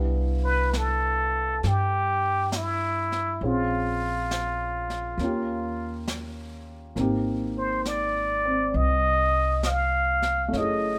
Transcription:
Already playing: C2 B3 D4 E4 G4
0.45 B4
0.73 A4, snare, hi-hat pedal
1.63 G2, brush sweep, snare
1.67 G4
2.52 E4, snare, hi-hat pedal
3.12 snare
3.41 A#1 C4 C#4 F4 G#4, brush sweep
3.46 F4
4.31 snare, hi-hat pedal
4.90 snare
5.18 D#2 A#3 C#4, brush sweep, snare
5.23 F4 G4
6.08 snare, hi-hat pedal
6.95 G#1 A#3 C4 D#4, brush sweep, snare
7.00 G4
7.58 C5
7.86 D5, snare, hi-hat pedal
8.45 C4
8.74 C2 D#5, brush sweep
9.63 D#5 F5, snare, hi-hat pedal
10.22 snare
10.48 A3 C#4
10.53 F#1 E4 D#5, brush sweep, snare
10.60 G#4

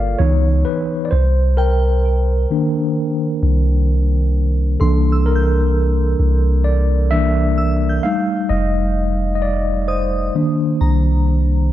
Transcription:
Already playing: G1 A#3 F4 A4 D5 F5 A5
0.19 C#2 E3 B3 D#4 C#5
0.65 B4
1.05 D5
1.11 C2 C5
1.57 A#4 G5
2.50 D#3 A#3 D4
3.43 C2
4.80 C2 E3 A#3 D4 A4 C6
5.12 E6
5.26 A#4
5.36 G6
6.20 C2
6.64 D5
7.11 E3 A#3 D4 E5
7.58 E6
7.89 G6
8.03 G3 A3 D#4 F5
8.49 F1 D#5
9.35 D#5
9.42 D5
9.88 C5 D#6
10.35 D#3 A#3 D4
10.81 C2 A#5

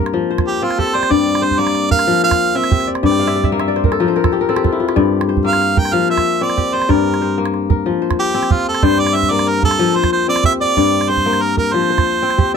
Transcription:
Already playing: G2 A#3 C4 G4 C5 D5
0.00 A#4
0.06 calabash click
0.14 F3
0.30 C5
0.38 calabash thump, calabash click
0.47 G4
0.62 C4 F4, calabash click
0.71 calabash click
0.78 G4 A4, calabash thump
0.87 calabash click
0.95 C5 D5
1.03 calabash click
1.10 G2 D5, calabash thump, calabash click
1.35 calabash click
1.42 C5, calabash click
1.51 calabash thump
1.59 A#3 D5
1.67 calabash click
1.75 calabash click
1.91 A#4 F5, calabash thump
1.99 calabash click
2.07 F3
2.23 C5 F5
2.31 calabash thump, calabash click
2.55 C4 E5, calabash click
2.64 calabash click
2.71 G4, calabash thump
2.80 calabash click
2.87 D5
2.95 calabash click
3.03 G2 D5, calabash thump
3.11 G5
3.20 F5
3.27 E5, calabash click
3.36 D5
3.44 E5, calabash thump, calabash click
3.52 A#3 F5
3.60 E5, calabash click
3.68 D5
3.76 C5, calabash click
3.84 A#4, calabash thump
3.92 A4, calabash click
4.00 F3 A#4, calabash click
4.08 C5
4.16 A#4, calabash click
4.24 A4, calabash thump, calabash click
4.32 G4, calabash click
4.41 A#4
4.49 C4 A4, calabash click
4.56 G4, calabash click
4.64 F4, calabash thump
4.72 E4
4.80 F4
4.88 G4, calabash click
4.96 G2 D5, calabash thump, calabash click
5.21 calabash click
5.29 C5, calabash click
5.37 calabash thump
5.45 A#3 F5
5.53 calabash click
5.61 calabash click
5.77 A#4 G5, calabash thump
5.85 calabash click
5.93 F3 F5
6.09 C5 E5
6.18 calabash thump, calabash click
6.41 C4 D5, calabash click
6.50 calabash click
6.57 G4, calabash thump
6.74 C5 D5
6.82 calabash click
6.89 G2 A#4 D5, calabash thump, calabash click
7.14 calabash click
7.21 C5, calabash click
7.38 A#3
7.46 calabash click
7.54 calabash click
7.70 A#4, calabash thump
7.86 F3
8.02 C5
8.11 calabash thump, calabash click
8.20 G4
8.34 C4, calabash click
8.43 calabash click
8.51 F4 G4, calabash thump
8.59 calabash click
8.69 A4
8.75 calabash click
8.83 G2 C5 D5, calabash thump, calabash click
9.00 D5
9.07 calabash click
9.15 C5 E5, calabash click
9.23 calabash thump
9.31 A#3 D5
9.39 calabash click
9.47 A#4, calabash click
9.63 A#3 A4, calabash thump
9.71 calabash click
9.79 F3
9.96 C5
10.04 calabash thump, calabash click
10.13 C5
10.28 C4 D5, calabash click
10.36 calabash click
10.44 G4 E5, calabash thump
10.52 calabash click
10.61 D5
10.77 G2 D5, calabash thump
11.01 calabash click
11.10 C5
11.17 calabash thump
11.25 A#3, calabash click
11.33 calabash click
11.42 A#4
11.57 A#4, calabash thump
11.73 F3 C5
11.82 calabash click
11.90 C5
11.98 calabash thump, calabash click
12.07 calabash click
12.22 C4
12.30 calabash click
12.38 G4, calabash thump, calabash click

